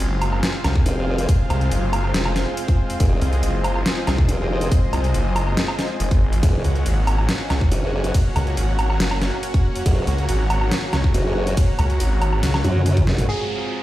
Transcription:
Already playing: supersaw synth G#3 C4 F4 C5 F5, ambient pad F4 C5 G#5 A#5
0.00 detuned saw bass F#1, closed hi-hat
0.09 ambient pad F5
0.22 closed hi-hat, low woodblock
0.33 low woodblock
0.43 snare, closed hi-hat
0.64 detuned saw bass C2, snare, closed hi-hat, low woodblock
0.76 kick
0.86 wobble bass F1, closed hi-hat
1.18 closed hi-hat
1.29 kick, closed hi-hat
1.50 detuned saw bass C2, closed hi-hat, low woodblock
1.61 closed hi-hat
1.72 detuned saw bass F#1, closed hi-hat
1.93 closed hi-hat, low woodblock
2.04 low woodblock
2.14 detuned saw bass F1, snare, closed hi-hat
2.25 low woodblock
2.36 snare, closed hi-hat
2.57 closed hi-hat
2.68 kick, closed hi-hat
2.82 ambient pad D#5
2.90 closed hi-hat
3.00 wobble bass F1, supersaw synth D#5, kick, closed hi-hat
3.21 detuned saw bass C2, closed hi-hat
3.33 closed hi-hat
3.43 detuned saw bass F#1, closed hi-hat
3.64 closed hi-hat, low woodblock
3.76 low woodblock
3.86 snare, closed hi-hat
4.07 detuned saw bass C2, snare, closed hi-hat, low woodblock
4.18 kick
4.29 wobble bass F1, closed hi-hat
4.61 closed hi-hat
4.72 kick, closed hi-hat
4.93 detuned saw bass C2, closed hi-hat, low woodblock
5.04 closed hi-hat
5.14 detuned saw bass F#1, closed hi-hat
5.36 closed hi-hat, low woodblock
5.47 low woodblock
5.57 snare, closed hi-hat
5.68 low woodblock
5.79 snare, closed hi-hat
6.00 detuned saw bass F1, closed hi-hat
6.11 detuned saw bass G#1, kick, closed hi-hat
6.33 closed hi-hat
6.43 wobble bass F#1, supersaw synth A#3 C#4 F#4 C#5 F#5, ambient pad F#4, kick, closed hi-hat, ride
6.64 detuned saw bass C#2, ambient pad C#5, closed hi-hat
6.76 closed hi-hat
6.86 detuned saw bass G#1, closed hi-hat, ride
7.07 closed hi-hat, low woodblock
7.18 low woodblock
7.29 snare, closed hi-hat, ride
7.37 ambient pad A#5
7.50 detuned saw bass C#2, snare, closed hi-hat, low woodblock
7.61 kick
7.72 wobble bass F#1, closed hi-hat, ride
8.04 closed hi-hat
8.14 kick, closed hi-hat, ride
8.36 detuned saw bass C#2, closed hi-hat, low woodblock
8.47 closed hi-hat
8.57 detuned saw bass G#1, closed hi-hat, ride
8.79 closed hi-hat, low woodblock
8.90 low woodblock
9.00 detuned saw bass F#1, snare, closed hi-hat, ride
9.11 low woodblock
9.22 snare, closed hi-hat
9.43 closed hi-hat, ride
9.54 kick, closed hi-hat
9.76 closed hi-hat
9.86 wobble bass F#1, kick, closed hi-hat, ride
10.07 detuned saw bass C#2, closed hi-hat
10.18 closed hi-hat
10.29 detuned saw bass G#1, closed hi-hat, ride
10.50 closed hi-hat, low woodblock
10.61 low woodblock
10.72 snare, closed hi-hat, ride
10.93 detuned saw bass C#2, snare, closed hi-hat, low woodblock
11.04 kick
11.14 wobble bass F#1, closed hi-hat, ride
11.47 closed hi-hat
11.57 kick, closed hi-hat, ride
11.79 detuned saw bass C#2, closed hi-hat, low woodblock
11.90 closed hi-hat
12.00 detuned saw bass G#1, closed hi-hat, ride
12.22 closed hi-hat, low woodblock
12.33 low woodblock
12.43 detuned saw bass C#2, snare, closed hi-hat, ride
12.54 snare, low woodblock
12.64 wobble bass F#2, closed hi-hat, high tom
12.76 mid tom
12.86 closed hi-hat, mid tom, ride
12.97 kick, closed hi-hat, mid tom
13.07 wobble bass G#1, snare
13.18 closed hi-hat, mid tom
13.29 supersaw synth G#3 C4 F4 C5 F5, ambient pad F4, grand piano G#4, downlifter
13.62 ambient pad C6
13.68 ambient pad F5

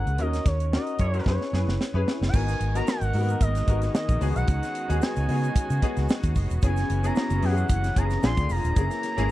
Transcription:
Already playing: grand piano C#4 E4 G#4 A#4, analog synth lead F#5
0.06 fingered electric bass C#2, closed hi-hat
0.18 fingered electric bass D#2, grand piano C#4 D#4 F#4 A#4, analog synth lead D#5, closed hi-hat
0.33 snare, closed hi-hat
0.46 fingered electric bass D#2, analog synth lead C#5, kick, snare, closed hi-hat
0.60 closed hi-hat
0.72 grand piano C#4 D#4 F#4 A#4, analog synth lead D#5, snare
0.87 closed hi-hat
0.99 fingered electric bass F#2, horn section G#3 E4 C#5, kick, closed hi-hat
1.14 grand piano C#4 D#4 F#4 A#4, closed hi-hat
1.26 fingered electric bass F#2, grand piano C#4 E4 G#4 B4, analog synth lead C#5, kick, snare
1.41 snare
1.53 fingered electric bass F#2, grand piano C#4 E4 G#4 B4, snare
1.67 fingered electric bass F#1, snare
1.81 snare
1.94 fingered electric bass F#2, grand piano C#4 E4 G#4 B4
2.08 snare
2.21 fingered electric bass F#1, snare
2.28 analog synth lead G5
2.33 fingered electric bass G#1, string section D#3 G#3 B3 F#4 A#4, grand piano B3 D#4 F#4 A#4, analog synth lead G#5, kick, crash, shaker
2.48 snare, closed hi-hat, shaker
2.60 fingered electric bass G#1, closed hi-hat
2.74 grand piano B3 D#4 F#4 A#4, analog synth lead A#5, closed hi-hat, shaker
2.87 analog synth lead F#5, snare, shaker
3.01 fingered electric bass G#1, closed hi-hat, shaker
3.13 fingered electric bass G#2, grand piano A#3 D#4 F#4 A#4, open hi-hat
3.20 grand piano B3
3.28 closed hi-hat, shaker
3.41 fingered electric bass G#1, analog synth lead D#5, kick, closed hi-hat, shaker
3.55 snare, closed hi-hat, shaker
3.67 fingered electric bass G#1, grand piano B3 D#4 F#4 A#4, kick, closed hi-hat
3.82 snare, closed hi-hat, shaker
3.95 analog synth lead D#5, snare, shaker
4.09 fingered electric bass A#1, kick, closed hi-hat, shaker
4.21 fingered electric bass C#2, grand piano B3 D#4 F#4 G#4, string section C#4, open hi-hat, shaker
4.36 fingered electric bass B1, analog synth lead F#5, closed hi-hat, shaker
4.48 fingered electric bass C#2, analog synth lead F#5, kick, closed hi-hat, shaker
4.63 snare, closed hi-hat, shaker
4.75 closed hi-hat
4.89 fingered electric bass D#2, grand piano B3 D#4 F#4 G#4, closed hi-hat, shaker
5.02 analog synth lead G#5, snare, shaker
5.16 fingered electric bass C#2, closed hi-hat, shaker
5.28 fingered electric bass C#3, grand piano B3 D#4 F#4 G#4, open hi-hat
5.44 closed hi-hat, shaker
5.56 muted fingered electric bass stroke, kick, closed hi-hat, shaker
5.70 fingered electric bass C#3, closed hi-hat, shaker
5.82 grand piano B3 D#4 F#4 G#4, kick, closed hi-hat
5.97 fingered electric bass C#2, snare, closed hi-hat, shaker
6.09 snare, shaker
6.23 fingered electric bass D#2, kick, closed hi-hat, shaker
6.36 fingered electric bass F#1, kick, open hi-hat, shaker
6.50 fingered electric bass E1, closed hi-hat, shaker
6.62 fingered electric bass F#1, string section E3 F#3 C#4, grand piano B3 C#4 E4 G#4, analog synth lead G#5, kick, closed hi-hat, shaker
6.77 snare, closed hi-hat, shaker
6.90 fingered electric bass F#1, closed hi-hat
7.03 grand piano B3 C#4 E4 G#4, analog synth lead A#5, closed hi-hat, shaker
7.15 snare, shaker
7.30 fingered electric bass F#1, closed hi-hat, shaker
7.42 fingered electric bass F#2, grand piano B3 C#4 E4 G4, analog synth lead F#5, open hi-hat
7.50 grand piano G#4
7.57 closed hi-hat, shaker
7.69 fingered electric bass F#1, analog synth lead F#5, kick, closed hi-hat, shaker
7.84 snare, closed hi-hat, shaker
7.96 fingered electric bass F#1, grand piano B3 C#4 E4 G#4, analog synth lead A#5, kick, closed hi-hat
8.10 snare, closed hi-hat, shaker
8.22 fingered electric bass A#1, string section D3 F3 G#3 A#3 F4, grand piano C4 D4 F4 G#4, analog synth lead C6, snare, shaker
8.37 fingered electric bass D2, kick, closed hi-hat, shaker
8.50 fingered electric bass F1, analog synth lead A#5, open hi-hat, shaker
8.64 fingered electric bass D#1, closed hi-hat, shaker
8.76 fingered electric bass F#1, string section C#3 E3 F#3 E4, grand piano A#3 C#4 E4 G#4, kick, closed hi-hat, shaker
8.91 snare, closed hi-hat, shaker
9.03 snare, closed hi-hat
9.17 fingered electric bass G#1, grand piano A#3 C#4 E4 G#4, closed hi-hat, shaker

